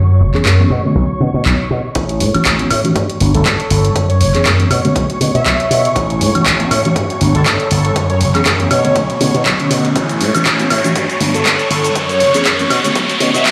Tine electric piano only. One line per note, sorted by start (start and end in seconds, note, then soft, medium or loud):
0.34 0.41 E3 medium
0.34 0.41 A3 medium
0.34 0.41 B3 medium
0.34 0.41 C#4 medium
0.34 0.41 G#4 medium
0.59 0.66 E3 medium
0.59 0.66 A3 medium
0.59 0.66 B3 medium
0.59 0.66 C#4 medium
0.59 0.66 G#4 medium
0.84 0.91 D3 medium
0.84 0.91 A3 medium
0.84 0.91 B3 medium
0.84 0.91 C#4 medium
0.84 0.91 F#4 medium
1.20 1.28 D3 medium
1.20 1.28 A3 medium
1.20 1.28 B3 medium
1.20 1.29 C#4 medium
1.20 1.29 F#4 medium
2.34 2.41 E3 medium
2.34 2.41 A3 medium
2.34 2.41 B3 medium
2.34 2.41 C#4 medium
2.34 2.41 F#4 medium
2.59 2.66 E3 medium
2.59 2.66 A3 medium
2.59 2.66 B3 medium
2.59 2.66 C#4 medium
2.59 2.66 F#4 medium
2.84 2.91 E3 medium
2.84 2.91 A3 medium
2.84 2.91 B3 medium
2.84 2.91 C#4 medium
2.84 2.91 F#4 medium
3.20 3.28 G3 medium
3.20 3.29 A3 medium
3.20 3.29 B3 medium
3.20 3.29 D4 medium
3.20 3.29 F#4 medium
4.34 4.41 E3 medium
4.34 4.41 A3 medium
4.34 4.41 B3 medium
4.34 4.41 C#4 medium
4.34 4.41 G#4 medium
4.59 4.66 E3 medium
4.59 4.66 A3 medium
4.59 4.66 B3 medium
4.59 4.66 C#4 medium
4.59 4.66 G#4 medium
4.84 4.91 D3 medium
4.84 4.91 A3 medium
4.84 4.91 B3 medium
4.84 4.91 C#4 medium
4.84 4.91 F#4 medium
5.20 5.28 D3 medium
5.20 5.29 A3 medium
5.20 5.29 B3 medium
5.20 5.29 C#4 medium
5.20 5.29 F#4 medium
6.34 6.41 E3 medium
6.34 6.41 A3 medium
6.34 6.41 B3 medium
6.34 6.41 C#4 medium
6.34 6.41 F#4 medium
6.59 6.66 E3 medium
6.59 6.66 A3 medium
6.59 6.66 B3 medium
6.59 6.66 C#4 medium
6.59 6.66 F#4 medium
6.85 6.91 E3 medium
6.85 6.91 A3 medium
6.85 6.91 B3 medium
6.85 6.91 C#4 medium
6.85 6.91 F#4 medium
7.21 7.29 G3 medium
7.21 7.29 A3 medium
7.21 7.29 B3 medium
7.21 7.29 D4 medium
7.21 7.29 F#4 medium
8.35 8.41 E3 medium
8.35 8.41 A3 medium
8.35 8.41 B3 medium
8.35 8.41 C#4 medium
8.35 8.41 G#4 medium
8.59 8.66 E3 medium
8.59 8.66 A3 medium
8.59 8.66 B3 medium
8.59 8.66 C#4 medium
8.59 8.66 G#4 medium
8.84 8.91 D3 medium
8.84 8.91 A3 medium
8.84 8.91 B3 medium
8.84 8.91 C#4 medium
8.84 8.91 F#4 medium
9.20 9.28 D3 medium
9.20 9.29 A3 medium
9.20 9.29 B3 medium
9.20 9.29 C#4 medium
9.20 9.29 E4 loud
9.59 9.94 D3 medium
9.59 9.94 A3 medium
9.59 9.94 B3 medium
9.59 9.95 C#4 medium
9.59 9.95 F#4 loud
10.34 10.41 E3 medium
10.34 10.41 A3 medium
10.34 10.41 B3 medium
10.34 10.41 C#4 medium
10.34 10.41 F#4 medium
10.59 10.66 E3 medium
10.59 10.66 A3 medium
10.59 10.66 B3 medium
10.59 10.66 C#4 medium
10.59 10.66 F#4 medium
10.84 10.91 E3 medium
10.84 10.91 A3 medium
10.84 10.91 B3 medium
10.84 10.91 C#4 medium
10.84 10.91 F#4 medium
11.21 11.29 G3 medium
11.21 11.29 A3 medium
11.21 11.29 B3 medium
11.21 11.29 D4 medium
11.21 11.29 F#4 medium
12.34 12.41 E3 medium
12.34 12.41 A3 medium
12.34 12.41 B3 medium
12.34 12.41 C#4 medium
12.34 12.41 G#4 medium
12.60 12.66 E3 medium
12.60 12.66 A3 medium
12.60 12.66 B3 medium
12.60 12.66 C#4 medium
12.60 12.66 G#4 medium
12.84 12.91 D3 medium
12.84 12.91 A3 medium
12.84 12.91 B3 medium
12.84 12.91 C#4 medium
12.84 12.91 F#4 loud
13.20 13.28 D3 medium
13.20 13.29 A3 medium
13.20 13.29 B3 medium
13.20 13.29 C#4 medium
13.20 13.29 F#4 medium